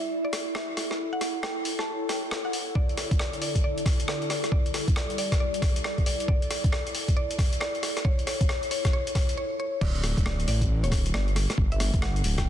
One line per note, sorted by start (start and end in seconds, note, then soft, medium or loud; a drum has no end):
0.00 9.37 E4 medium
0.00 9.38 A4 medium
0.00 0.99 D5 medium
0.25 0.38 D5 medium
0.33 cross-stick medium
0.33 open hi-hat loud
0.55 0.68 E5 medium
0.55 cross-stick loud
0.77 cross-stick medium
0.77 open hi-hat loud
0.91 cross-stick medium
1.13 1.26 F#5 loud
1.21 4.30 C#5 medium
1.21 cross-stick medium
1.21 open hi-hat loud
1.43 1.60 G5 medium
1.43 cross-stick loud
1.65 open hi-hat loud
1.79 1.92 A5 medium
1.79 cross-stick medium
2.09 2.26 G5 medium
2.09 cross-stick medium
2.09 open hi-hat loud
2.31 cross-stick loud
2.45 2.58 F#5 medium
2.53 open hi-hat loud
2.75 4.30 D3 medium
2.75 2.96 D5 medium
2.75 kick loud
2.89 closed hi-hat soft
2.97 cross-stick medium
2.97 open hi-hat loud
3.11 kick loud
3.11 closed hi-hat medium
3.19 3.32 D5 medium
3.19 cross-stick loud
3.33 closed hi-hat medium
3.42 3.59 D5 medium
3.42 open hi-hat loud
3.55 kick medium
3.55 closed hi-hat medium
3.64 3.85 D5 medium
3.78 closed hi-hat medium
3.86 kick loud
3.86 cross-stick medium
3.86 open hi-hat loud
4.00 closed hi-hat medium
4.08 4.21 D5 medium
4.08 cross-stick loud
4.22 closed hi-hat soft
4.30 6.29 G3 medium
4.30 4.47 D5 medium
4.30 cross-stick medium
4.30 open hi-hat loud
4.44 cross-stick medium
4.44 closed hi-hat medium
4.52 4.73 D5 medium
4.52 kick loud
4.66 closed hi-hat soft
4.74 cross-stick medium
4.74 open hi-hat loud
4.86 8.05 D5 medium
4.86 kick loud
4.86 closed hi-hat medium
4.96 5.09 D5 medium
4.96 cross-stick loud
5.10 closed hi-hat medium
5.18 5.35 D5 medium
5.18 open hi-hat loud
5.32 kick medium
5.32 cross-stick medium
5.32 closed hi-hat medium
5.40 5.61 D5 loud
5.54 closed hi-hat medium
5.62 kick loud
5.62 cross-stick medium
5.62 open hi-hat loud
5.76 closed hi-hat medium
5.84 5.97 D5 medium
5.84 cross-stick loud
5.98 kick medium
5.98 closed hi-hat soft
6.06 6.23 D5 medium
6.06 open hi-hat loud
6.20 closed hi-hat medium
6.28 6.49 D5 loud
6.28 kick loud
6.42 closed hi-hat soft
6.51 cross-stick medium
6.51 open hi-hat loud
6.64 kick loud
6.64 closed hi-hat medium
6.72 6.93 D5 loud
6.72 cross-stick loud
6.87 closed hi-hat medium
6.95 open hi-hat loud
7.08 kick medium
7.08 closed hi-hat medium
7.17 7.37 D5 loud
7.31 closed hi-hat medium
7.39 kick loud
7.39 cross-stick medium
7.39 open hi-hat loud
7.53 closed hi-hat medium
7.60 7.81 D5 loud
7.60 cross-stick loud
7.75 closed hi-hat soft
7.83 cross-stick medium
7.83 open hi-hat loud
7.97 cross-stick medium
7.97 closed hi-hat medium
8.05 8.26 C#5 loud
8.05 kick loud
8.19 closed hi-hat soft
8.27 8.48 C#5 loud
8.27 cross-stick medium
8.27 open hi-hat loud
8.41 kick loud
8.41 closed hi-hat medium
8.49 8.70 C#5 loud
8.49 cross-stick loud
8.63 closed hi-hat medium
8.71 8.92 C#5 loud
8.71 open hi-hat loud
8.85 kick medium
8.85 cross-stick medium
8.85 closed hi-hat medium
8.93 9.14 C#5 loud
9.07 closed hi-hat medium
9.15 9.36 C#5 loud
9.15 kick loud
9.15 cross-stick medium
9.15 open hi-hat loud
9.29 closed hi-hat medium
9.37 9.58 C#5 loud
9.60 9.80 C#5 loud
9.81 10.14 D1 loud
9.81 10.02 D5 loud
9.81 kick loud
9.81 crash loud
9.95 closed hi-hat soft
10.04 cross-stick medium
10.04 open hi-hat loud
10.17 10.46 D1 loud
10.17 kick loud
10.17 closed hi-hat medium
10.26 10.38 D5 medium
10.26 cross-stick loud
10.40 closed hi-hat medium
10.48 10.85 A1 medium
10.48 10.65 D5 medium
10.48 open hi-hat loud
10.61 kick medium
10.61 closed hi-hat medium
10.84 11.12 D1 loud
10.84 10.97 C#5 loud
10.84 closed hi-hat medium
10.92 kick loud
10.92 cross-stick medium
10.92 open hi-hat loud
11.06 closed hi-hat medium
11.14 11.47 G1 loud
11.14 11.27 D5 medium
11.14 cross-stick loud
11.28 closed hi-hat soft
11.36 cross-stick medium
11.36 open hi-hat loud
11.50 cross-stick medium
11.50 closed hi-hat medium
11.58 11.91 G1 loud
11.58 kick loud
11.72 11.85 E5 loud
11.72 closed hi-hat soft
11.80 cross-stick medium
11.80 open hi-hat loud
11.94 12.22 G1 loud
11.94 kick loud
11.94 closed hi-hat medium
12.02 12.19 F#5 loud
12.02 cross-stick loud
12.16 closed hi-hat medium
12.24 12.49 D1 medium
12.24 open hi-hat loud
12.38 12.49 G5 loud
12.38 kick medium
12.38 cross-stick medium
12.38 closed hi-hat medium